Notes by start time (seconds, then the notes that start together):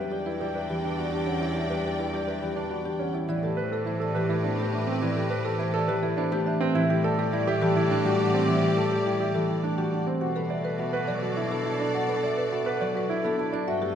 Already playing: E2 F#3 G3 B3 D4 G4 B4 D5 G5
0.11 G4 D5
0.26 E4 B4
0.40 G3 G4 D5
0.55 B4 E5
0.70 E3 G4
0.83 D4 B4
0.98 B3 F#4 D5
1.12 D4 G4
1.27 C#4 F#5
1.41 E4 C#5
1.55 G4 E5
1.70 G3 G4 B4
1.84 G4 D5
1.99 E4 B4
2.13 G3 G4 D5
2.27 B4 E5
2.42 E3 G4
2.56 D4 B4
2.71 B3 F#4 D5
2.85 D4 G4
2.99 C#4 F#5
3.14 E4 C#5
3.28 A2 E3 E4 G4 B4 D5
3.43 A3 G4 A4
3.57 B4 C5
3.72 A4
3.86 A3 E4 C5
4.00 A4 D5
4.14 E3 G4 B4
4.29 E4 A4
4.44 B3 D4 C5
4.58 A3 G4
4.73 D4 E5
4.87 C4 B4
5.02 E3 E4 D5
5.16 A3 G4 A4
5.30 B4 C5
5.45 A4
5.59 A3 E4 C5
5.74 A4 D5
5.88 E3 G4 B4
6.02 E4 A4
6.17 B3 D4 C5
6.31 A3 G4
6.46 D4 E5
6.61 C4 B4
6.74 A2 E3 E4 G4 D5 E5
6.90 G3 G4
7.04 A4 D5
7.18 G4 A4
7.33 G3 E4 D5
7.47 G4 E5
7.61 E3 G4 A4
7.76 E4 A4
7.90 A3 D4 D5
8.04 G3 F#4 G4
8.19 D4 F#5
8.34 C4
8.48 E3 E4 E5
8.63 G3 G4
8.77 A4 D5
8.92 G4 A4
9.06 G3 E4 D5
9.20 G4 E5
9.34 E3 G4 A4
9.49 E4
9.63 A3 D4 D5
9.78 G3 F#4 G4
9.92 D4 F#5
10.07 C4 C5
10.21 B2 F#4 A4 D5 F#5
10.36 B3 A4 B4
10.50 D5 E5
10.64 B4
10.79 B3 F#4 E5
10.93 B4 F#5
11.07 F#3 A4 D5
11.22 F#4 B4
11.36 D4 E4 E5
11.51 B3 A4
11.66 E4 A5
11.80 D4 D5
11.94 F#4 F#5
12.08 B3 A4 B4
12.23 D5 E5
12.37 B4
12.52 B3 F#4 E5
12.66 B4 F#5
12.81 F#3 A4 D5
12.95 F#4 B4
13.09 D4 E4 E5
13.24 B3 A4
13.38 E4 A5
13.53 D4 D5
13.67 G2 F#4 B4 E5 G5
13.82 A3 G4 A4